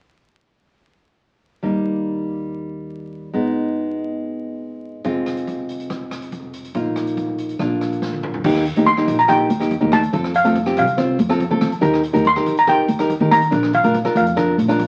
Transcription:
1.63 D#2 G3 A#3 D#4
3.33 G#1 G#3 B3 D#4
5.04 F1 G#3 C4 F4, kick, closed hi-hat
5.26 cross-stick, closed hi-hat
5.37 closed hi-hat
5.47 kick, closed hi-hat
5.69 closed hi-hat
5.80 closed hi-hat
5.90 kick, cross-stick, closed hi-hat
6.11 cross-stick, closed hi-hat
6.22 closed hi-hat
6.32 kick, closed hi-hat
6.53 closed hi-hat
6.65 closed hi-hat
6.74 A#1 A#3 D#4 F4, kick, closed hi-hat
6.96 cross-stick, closed hi-hat
7.07 closed hi-hat
7.17 kick, closed hi-hat
7.38 closed hi-hat
7.49 closed hi-hat
7.59 A#1 A#3 D4 F4, kick, cross-stick, closed hi-hat
7.81 cross-stick, closed hi-hat
7.92 closed hi-hat
8.02 kick, snare
8.13 high tom
8.23 mid tom
8.34 floor tom
8.44 D#2 A#3 D#4 G4, kick, crash
8.55 cross-stick
8.65 closed hi-hat
8.76 D#2 A#3 D#4 G4, closed hi-hat, high conga
8.86 C6, kick, closed hi-hat
8.97 A#3 D#4 G4, cross-stick
9.08 A#1, closed hi-hat, low conga
9.19 A#5, closed hi-hat
9.28 A#3 D#4 G4 G5, kick, cross-stick, closed hi-hat
9.50 D#2, closed hi-hat, high conga
9.60 A#3 D#4 G4, cross-stick, closed hi-hat
9.71 kick, closed hi-hat
9.81 D#2 A#3 D#4 G4, high conga
9.92 A5, cross-stick, closed hi-hat, high conga, low conga
10.03 closed hi-hat
10.12 F2 C4 F4 A4, kick, closed hi-hat
10.24 cross-stick
10.34 F5, closed hi-hat
10.44 F2 C4 F4 A4, closed hi-hat, high conga
10.56 kick, closed hi-hat
10.66 C4 F4 G4, cross-stick
10.77 C2 F5, closed hi-hat, low conga
10.87 closed hi-hat
10.97 C4 F4 C5, kick, cross-stick, closed hi-hat
11.19 F2, closed hi-hat, high conga
11.29 C4 F4 A4, cross-stick, closed hi-hat
11.40 kick, closed hi-hat
11.51 F3 C4 F4 A4, high conga
11.61 cross-stick, closed hi-hat, high conga, low conga
11.72 closed hi-hat
11.81 D#2 D#4 G4 A#4, kick, closed hi-hat
11.94 cross-stick
12.04 closed hi-hat
12.13 D#2 D#4 G4 A#4, closed hi-hat, high conga
12.25 C6, kick, closed hi-hat
12.36 D#4 G4 A#4, cross-stick
12.46 A#1, closed hi-hat, low conga
12.57 A#5, closed hi-hat
12.67 D#4 G4 A#4 G5, kick, cross-stick, closed hi-hat
12.88 D#2, closed hi-hat, high conga
12.99 D#4 G4 A#4, cross-stick, closed hi-hat
13.10 kick, closed hi-hat
13.20 D#3 D#4 G4 A#4, high conga
13.31 A#5, cross-stick, closed hi-hat, high conga, low conga
13.42 closed hi-hat
13.51 A#1 D4 F4 A#4, kick, closed hi-hat, low conga
13.63 cross-stick
13.73 F5, closed hi-hat, low conga
13.83 A#1 D4 F4 A#4, closed hi-hat, high conga
13.94 kick, closed hi-hat
14.04 D4 F4 A#4, cross-stick
14.15 F2 F5, closed hi-hat, high conga, low conga
14.27 closed hi-hat
14.36 D4 F4 A#4, kick, cross-stick, closed hi-hat
14.58 A#1, closed hi-hat, high conga
14.68 D4 F4 A#4, cross-stick, closed hi-hat
14.79 kick, closed hi-hat

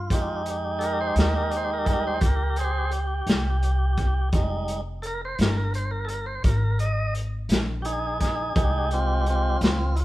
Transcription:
Already playing: F4
0.10 F2 G#3 D#4 G4, kick, closed hi-hat
0.46 closed hi-hat
0.79 A4, closed hi-hat
0.84 A#4
1.01 C5
1.16 D#2, snare, closed hi-hat
1.20 A#4
1.37 A#4
1.51 closed hi-hat
1.56 C5
1.73 A#4
1.85 G3 G#3 D#4 A4, kick, closed hi-hat
1.90 A#4
2.07 C5
2.21 C#2, kick, closed hi-hat
2.26 A#4
2.56 G#4, closed hi-hat
2.60 C5
2.91 closed hi-hat
3.27 C2, snare, closed hi-hat
3.63 closed hi-hat
3.97 kick, closed hi-hat
4.33 F1 G3 G#3 D#4, kick, closed hi-hat
4.68 closed hi-hat
5.02 A4, closed hi-hat
5.07 A#4
5.25 C5
5.39 G1 A#4, snare, closed hi-hat
5.57 A#4
5.74 C5, closed hi-hat
5.91 A#4
6.05 A4, closed hi-hat
6.10 A#4
6.26 C5
6.44 G#1 A#4, kick, closed hi-hat
6.79 D#5, closed hi-hat
7.15 closed hi-hat
7.49 A#1, snare, closed hi-hat
7.82 D#4 G4 G#4, closed hi-hat
8.20 D#4 G#4, kick, snare, closed hi-hat
8.55 C2 G#3 D#4 G4 G#4, kick, closed hi-hat
8.91 C4 F4, closed hi-hat
9.26 C4 F4, closed hi-hat
9.61 C#2 C4 F4, snare, closed hi-hat
9.96 E4, closed hi-hat
10.00 F4

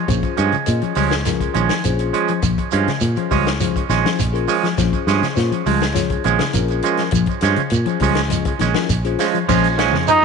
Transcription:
0.08 A#1 F3 C#4 F4 G#4 C5, kick, closed hi-hat, shekere
0.23 kick, closed hi-hat, shekere
0.37 G2 F3 G#3 C#4, closed hi-hat, shekere
0.52 C#3, muted fingered electric bass stroke, closed hi-hat, shekere
0.66 A#2 C#4 F4 G#4 D#5, closed hi-hat, shekere
0.82 F3, muted fingered electric bass stroke, closed hi-hat, shekere
0.95 C#2 F3 G3 G#3 C#4, open hi-hat, shekere
1.11 snare, closed hi-hat, shekere
1.25 F3 C#4 F4 G#4 A#4, snare, closed hi-hat, shekere
1.40 kick, closed hi-hat, shekere
1.54 A#1 D#3 F3 G#3 C#4, closed hi-hat, shekere
1.69 F3, snare, closed hi-hat, shekere
1.84 A#1 C#4 F4 G#4 C5, closed hi-hat, shekere
1.99 closed hi-hat, shekere
2.13 F3 G#3 C#4, closed hi-hat, shekere
2.28 F3, closed hi-hat, shekere
2.42 A#1 F3, kick, closed hi-hat, shekere
2.58 kick, closed hi-hat, shekere
2.72 G2 F3 G#3 C#4, closed hi-hat, shekere
2.88 C#3, muted fingered electric bass stroke, snare, closed hi-hat, shekere
3.01 A#2, closed hi-hat, shekere
3.16 F3 C#4 F4 G#4 C5, muted fingered electric bass stroke, closed hi-hat, shekere
3.31 C#2 F3 G3 G#3 C#4, kick, open hi-hat, shekere
3.46 snare, closed hi-hat, shekere
3.60 F3 C#4 F4 G#4 C5, closed hi-hat, shekere
3.76 kick, closed hi-hat, shekere
3.89 A#1 D#3 F3 G#3 C#4, snare, closed hi-hat, shekere
4.05 F3 C#4 F4 G#4 C5, snare, closed hi-hat, shekere
4.19 A#1, kick, closed hi-hat, shekere
4.33 C#4 F4 G#4 A#4, closed hi-hat, shekere
4.48 F3 G#3 C#4, open hi-hat, shekere
4.63 F3, snare, closed hi-hat, shekere
4.77 A#1 F3 C#4 F4 G#4 C5, kick, snare, closed hi-hat, shekere
4.93 kick, closed hi-hat, shekere
5.07 G2 F3 G#3 C#4, snare, closed hi-hat, shekere
5.22 C#3, muted fingered electric bass stroke, snare, closed hi-hat, shekere
5.35 A#2 C#4 F4 G#4 C5, snare, closed hi-hat, shekere
5.51 F3, muted fingered electric bass stroke, closed hi-hat, shekere
5.66 C#2 F3 G3 G#3, open hi-hat, shekere
5.82 snare, closed hi-hat, shekere
5.93 F3 C#4 F4 G#4 C#5, snare, closed hi-hat, shekere
6.10 kick, closed hi-hat, shekere
6.24 A#1 D#3 F3 G#3 C#4, closed hi-hat, shekere
6.39 C#3, snare, closed hi-hat, shekere
6.53 A#1 C#4 F4 G#4 A#4, closed hi-hat, shekere
6.68 closed hi-hat, shekere
6.82 F3 G#3 C#4, closed hi-hat, shekere
6.97 F3, snare, closed hi-hat, shekere
7.11 A#1 F3, kick, closed hi-hat
7.15 shekere
7.26 kick, closed hi-hat
7.31 shekere
7.41 G2 F3 G#3 C#4, snare, closed hi-hat, shekere
7.56 C#3, muted fingered electric bass stroke, closed hi-hat, shekere
7.70 A#2, closed hi-hat, shekere
7.86 F3 C#4 F4 G#4 C5, muted fingered electric bass stroke, closed hi-hat, shekere
8.00 C#2 F3 G3 G#3 C#4, kick, open hi-hat, shekere
8.15 snare, closed hi-hat, shekere
8.29 F3 C#4 F4 G#4 D#5, closed hi-hat, shekere
8.45 kick, closed hi-hat, shekere
8.59 A#1 D#3 G#3 C#4, snare, closed hi-hat, shekere
8.74 F3 C#4 F4 G#4 A#4, snare, closed hi-hat, shekere
8.89 A#1, kick, closed hi-hat, shekere
9.05 C#4 F4 G#4 C5, closed hi-hat, shekere
9.19 F3 G#3 C#4, snare, open hi-hat, shekere
9.34 F3, closed hi-hat, shekere
9.49 A#1 F3 G#3 C#4 F4 G#4 C5, kick, snare, crash, shekere
9.64 closed hi-hat
9.78 F3 G#3 C#4, snare, closed hi-hat, shekere
9.92 F2 C#3, snare
10.08 C#4 D#4 F4 G#4 C5, closed hi-hat, shekere

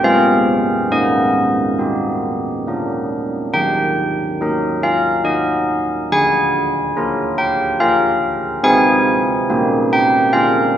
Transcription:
0.03 G#3 C4 G#4 F5
0.91 A#3 D#5
1.79 D#4 G4
2.67 A#3 D4 A#4
3.54 D#3 G5
4.41 D#4 A#4
4.83 F5
5.24 D#4 A#4 D#5
6.12 D3 G#5
6.97 F4 A#4
7.38 G5
7.80 F4 A#4 F5
8.63 C4 D#4 G#4 G#5
9.50 A#3 D#4 G4
9.93 G5
10.33 A#3 D4 F4 F5

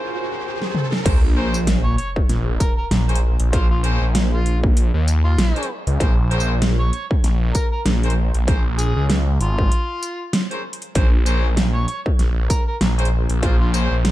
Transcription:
Already playing: C#4 G#4 A#4 C5, riser
0.62 snare
0.75 mid tom
0.92 snare
1.05 A#1 C#4 G#4 A#4 C5, kick, snare, closed hi-hat, crash, sub drop
1.36 C#4 G#4 A#4 C5
1.54 tambourine
1.67 snare, closed hi-hat
1.85 C#5
1.97 C#5, closed hi-hat
2.16 kick
2.29 A#1, snare, closed hi-hat
2.60 A#4, kick, closed hi-hat, tambourine
2.78 A#4
2.91 A#1, snare, closed hi-hat
3.08 C#4 G#4 A#4 C5, closed hi-hat
3.15 closed hi-hat
3.40 A#1, closed hi-hat
3.53 C#4 F4 G#4 A#4 C5, kick, snare, closed hi-hat
3.71 F4
3.84 C#4 G#4 A#4 C5, closed hi-hat
4.01 A#1
4.15 snare, closed hi-hat
4.33 F4
4.46 closed hi-hat
4.64 kick
4.77 closed hi-hat
4.94 D#2
5.08 closed hi-hat, tambourine
5.25 F4
5.38 A#1, snare, closed hi-hat
5.56 C#4 G#4 A#4 C5, closed hi-hat
5.63 closed hi-hat
5.87 C#2, closed hi-hat
6.00 A#1 C#4 G#4 A#4 C5, kick, snare, closed hi-hat
6.31 C#4 G#4 A#4 C5, closed hi-hat
6.40 tambourine
6.62 snare, closed hi-hat
6.80 C#5
6.92 C#5, closed hi-hat
7.11 kick
7.23 A#1, snare, closed hi-hat
7.54 A#4, kick, closed hi-hat, tambourine
7.72 A#4
7.86 A#1, snare, closed hi-hat
8.03 C#4 G#4 A#4 C5, closed hi-hat
8.10 closed hi-hat
8.34 A#1, closed hi-hat
8.47 C#4 G#4 A#4 C5, kick, snare, closed hi-hat
8.79 G#4, closed hi-hat, tambourine
8.96 C#2
9.10 snare, closed hi-hat
9.40 G#1 F4, closed hi-hat
9.59 kick
9.72 closed hi-hat
10.03 closed hi-hat, tambourine
10.33 snare, closed hi-hat
10.51 C#4 G#4 A#4 C5, closed hi-hat
10.73 closed hi-hat
10.82 closed hi-hat
10.95 A#1 C#4 G#4 A#4 C5, kick, snare, closed hi-hat
11.26 C#4 G#4 A#4 C5, closed hi-hat, tambourine
11.57 snare, closed hi-hat
11.75 C#5
11.88 C#5, closed hi-hat
12.06 kick
12.19 A#1, snare, closed hi-hat
12.50 A#4, kick, closed hi-hat, tambourine
12.68 A#4
12.81 A#1, snare, closed hi-hat
12.98 C#4 G#4 A#4 C5, closed hi-hat
13.05 closed hi-hat
13.29 A#1, closed hi-hat
13.42 C#4 F4 G#4 A#4 C5, kick, snare, closed hi-hat
13.60 F4
13.73 C#4 G#4 A#4 C5, closed hi-hat, tambourine
13.91 A#1
14.05 snare, closed hi-hat

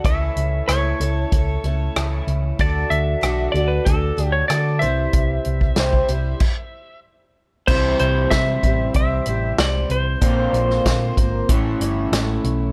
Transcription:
0.05 C#2 C#3 E3 A3 C#4 E4 A4 E5, kick, closed hi-hat
0.36 C#2, closed hi-hat
0.68 C#2 C#3 E3 A3 C#4 E4 A4 C#5, cross-stick, closed hi-hat
1.00 C#2 A3 C#4 E4 A4, closed hi-hat
1.32 C#2 A3 C#4 E4 A4, kick, closed hi-hat
1.64 C#2 A3 C#4 E4 A4, closed hi-hat
1.96 C#2 C#3 E3 A3 C#4 E4 A4, cross-stick, closed hi-hat
2.27 C#2, closed hi-hat
2.59 D2 D3 A3 D4 F#4 A4 D5, kick, closed hi-hat
2.90 D2 E5, closed hi-hat
3.21 B1 D3 A3 D4 F#4 A4, cross-stick, closed hi-hat
3.52 D2 F#4 A4 D5, closed hi-hat
3.57 D4
3.68 B4
3.85 D2 A3 D4 F#4 A4, kick, closed hi-hat
4.17 D2 D4 F#4 A4, closed hi-hat
4.32 C#5
4.48 D3 A3 D4 F#4 A4 D5, cross-stick, closed hi-hat
4.79 C2 C3 E3 G3 C4 E4 C5 E5, closed hi-hat
5.13 C2, kick, closed hi-hat
5.45 C2, closed hi-hat
5.61 kick
5.76 C2 C3 E3 G3 C4 E4 C5, snare, closed hi-hat
5.93 kick
6.08 C2 G3 C4 E4 C5, closed hi-hat
6.40 kick, crash
7.67 C2 C3 E3 G3 C4 E4 C5, kick, crash
7.99 C2 C5, closed hi-hat
8.30 C3 G3 C4 E4 E5, kick, snare, closed hi-hat
8.35 C5
8.63 A1 G3 C4 E4 C5, kick, closed hi-hat
8.94 C2 G3 C4 E5, kick, closed hi-hat
8.98 E4 C5
9.26 A1 C4 E4 C5, closed hi-hat
9.30 G3
9.58 C2 G3 C4 E4 C5 D5, snare, closed hi-hat
9.89 C2 C5, closed hi-hat
10.21 A#1 A#2 D3 A#3 C4 F4 C5, kick, closed hi-hat
10.53 A#1, closed hi-hat
10.70 snare
10.85 A#2 A#3 C4 F4 C5, kick, snare, closed hi-hat
11.17 G#1 A#3 C4 F4 C5, kick, closed hi-hat
11.49 A1 A2 E3 A3 C#4 E4 C#5, kick, closed hi-hat
11.80 G1 A3 C#4 E4 C#5, closed hi-hat
12.12 A1 A3 C#4 E4 C#5, snare, closed hi-hat
12.44 B1, closed hi-hat

